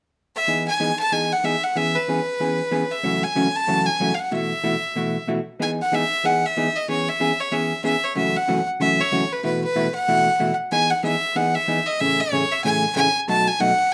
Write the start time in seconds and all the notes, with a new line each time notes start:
0.36 E5
0.48 E3 B3 D#4 G#4
0.68 G#5
0.80 E3 B3 D#4 G#4
0.99 A5
1.12 E3 B3 D#4 G#4 G#5
1.32 F#5
1.44 E3 B3 D#4 G#4 E5
1.63 F#5
1.76 E3 B3 C#4 G#4 E5
1.96 B4
2.08 E3 B3 C#4 G#4
2.40 E3 B3 C#4 G#4
2.71 E3 B3 C#4 G#4
2.91 E5
3.03 F#2 C#3 E3 A3 C#4 F#4
3.23 G#5
3.35 F#2 C#3 E3 A3 C#4 F#4
3.56 A5
3.67 F#2 C#3 E3 A3 C#4 F#4
3.86 G#5
4.00 F#2 C#3 E3 A3 C#4 F#4
4.15 F5
4.19 F#5
4.31 B2 E3 A3 E4 F#4 E5
4.64 B2 E3 A3 E4 F#4
4.96 B2 E3 A3 E4 F#4
5.27 B2 E3 A3 E4 F#4
5.59 E3 B3 D#4 G#4 G#5
5.82 F#5
5.92 E3 B3 D#4 G#4 E5
6.24 E3 B3 D#4 G#4 F#5
6.45 E5
6.57 E3 B3 D#4 G#4
6.76 D#5
6.88 E3 B3 C#4 G#4 C#5
7.09 E5
7.20 E3 B3 C#4 G#4
7.40 C#5
7.52 E3 B3 C#4 G#4 E5
7.84 E3 B3 C#4 G#4 E5
8.04 C#5
8.15 F#2 C#3 E3 A3 C#4 F#4 E5
8.36 F#5
8.48 F#2 C#3 E3 A3 C#4 F#4
8.80 F#2 C#3 E3 A3 C#4 F#4 E5
9.01 C#5
9.12 F#2 C#3 E3 A3 C#4 F#4
9.32 B4
9.43 B2 E3 A3 E4 F#4 B4
9.64 B4
9.76 B2 E3 A3 E4 F#4
9.95 F#5
10.08 B2 E3 A3 E4 F#4
10.40 B2 E3 A3 E4 F#4
10.72 E3 B3 D#4 G#4 G#5
10.90 F#5
11.03 E3 B3 D#4 G#4 E5
11.35 E3 B3 D#4 G#4 F#5
11.55 E5
11.68 E3 B3 D#4 G#4
11.86 D#5
12.00 A2 C#3 E3 A3 C#4 G#4 E5
12.20 C#5
12.32 A2 C#3 E3 A3 C#4 G#4
12.52 E5
12.64 A2 C#3 E3 A3 C#4 G#4 G#5
12.96 A2 C#3 E3 A3 C#4 G#4 G#5
13.28 B2 F#3 A3 D#4 F#4 A5
13.48 G#5
13.60 B2 F#3 A3 D#4 F#4 F#5